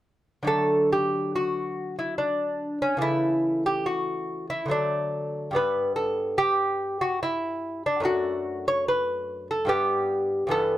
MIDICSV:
0, 0, Header, 1, 2, 480
1, 0, Start_track
1, 0, Key_signature, 2, "major"
1, 0, Tempo, 872093
1, 261, Time_signature, 3, 2, 24, 8
1, 736, Tempo, 841515
1, 3136, Tempo, 828729
1, 6168, End_track
2, 0, Start_track
2, 0, Title_t, "Lute"
2, 0, Program_c, 0, 24
2, 235, Note_on_c, 0, 50, 39
2, 245, Note_on_c, 0, 54, 33
2, 257, Note_on_c, 0, 57, 29
2, 261, Note_on_c, 0, 69, 60
2, 491, Note_off_c, 0, 69, 0
2, 509, Note_on_c, 0, 67, 56
2, 731, Note_off_c, 0, 67, 0
2, 746, Note_on_c, 0, 66, 56
2, 1086, Note_off_c, 0, 66, 0
2, 1106, Note_on_c, 0, 64, 50
2, 1215, Note_off_c, 0, 64, 0
2, 1217, Note_on_c, 0, 62, 47
2, 1557, Note_off_c, 0, 62, 0
2, 1581, Note_on_c, 0, 61, 54
2, 1653, Note_off_c, 0, 50, 0
2, 1658, Note_off_c, 0, 54, 0
2, 1665, Note_off_c, 0, 57, 0
2, 1667, Note_on_c, 0, 49, 34
2, 1675, Note_on_c, 0, 52, 32
2, 1688, Note_off_c, 0, 61, 0
2, 1690, Note_on_c, 0, 57, 32
2, 1694, Note_on_c, 0, 64, 59
2, 2040, Note_off_c, 0, 64, 0
2, 2061, Note_on_c, 0, 67, 62
2, 2175, Note_on_c, 0, 66, 54
2, 2178, Note_off_c, 0, 67, 0
2, 2520, Note_off_c, 0, 66, 0
2, 2540, Note_on_c, 0, 64, 54
2, 2620, Note_off_c, 0, 49, 0
2, 2624, Note_off_c, 0, 52, 0
2, 2629, Note_on_c, 0, 50, 34
2, 2631, Note_off_c, 0, 57, 0
2, 2645, Note_on_c, 0, 54, 27
2, 2651, Note_on_c, 0, 57, 29
2, 2657, Note_off_c, 0, 64, 0
2, 2661, Note_on_c, 0, 62, 55
2, 3108, Note_off_c, 0, 50, 0
2, 3115, Note_on_c, 0, 43, 36
2, 3116, Note_off_c, 0, 54, 0
2, 3120, Note_off_c, 0, 57, 0
2, 3120, Note_off_c, 0, 62, 0
2, 3128, Note_on_c, 0, 55, 27
2, 3137, Note_on_c, 0, 59, 30
2, 3145, Note_on_c, 0, 71, 55
2, 3373, Note_off_c, 0, 71, 0
2, 3376, Note_on_c, 0, 69, 60
2, 3609, Note_off_c, 0, 69, 0
2, 3620, Note_on_c, 0, 67, 69
2, 3968, Note_off_c, 0, 67, 0
2, 3986, Note_on_c, 0, 66, 60
2, 4105, Note_off_c, 0, 66, 0
2, 4110, Note_on_c, 0, 64, 56
2, 4457, Note_off_c, 0, 64, 0
2, 4478, Note_on_c, 0, 62, 51
2, 4555, Note_off_c, 0, 43, 0
2, 4559, Note_on_c, 0, 42, 44
2, 4561, Note_off_c, 0, 55, 0
2, 4566, Note_off_c, 0, 59, 0
2, 4567, Note_on_c, 0, 57, 29
2, 4571, Note_off_c, 0, 62, 0
2, 4578, Note_on_c, 0, 62, 35
2, 4587, Note_on_c, 0, 66, 60
2, 4931, Note_off_c, 0, 66, 0
2, 4951, Note_on_c, 0, 73, 70
2, 5067, Note_off_c, 0, 73, 0
2, 5070, Note_on_c, 0, 71, 61
2, 5410, Note_off_c, 0, 71, 0
2, 5431, Note_on_c, 0, 69, 62
2, 5502, Note_off_c, 0, 42, 0
2, 5506, Note_off_c, 0, 57, 0
2, 5512, Note_off_c, 0, 62, 0
2, 5513, Note_on_c, 0, 43, 35
2, 5522, Note_on_c, 0, 55, 34
2, 5532, Note_on_c, 0, 59, 34
2, 5537, Note_on_c, 0, 67, 61
2, 5545, Note_off_c, 0, 69, 0
2, 5981, Note_off_c, 0, 43, 0
2, 5988, Note_on_c, 0, 43, 40
2, 5993, Note_off_c, 0, 55, 0
2, 5996, Note_off_c, 0, 67, 0
2, 5997, Note_on_c, 0, 52, 37
2, 5998, Note_off_c, 0, 59, 0
2, 6007, Note_on_c, 0, 59, 32
2, 6014, Note_on_c, 0, 69, 81
2, 6168, Note_off_c, 0, 43, 0
2, 6168, Note_off_c, 0, 52, 0
2, 6168, Note_off_c, 0, 59, 0
2, 6168, Note_off_c, 0, 69, 0
2, 6168, End_track
0, 0, End_of_file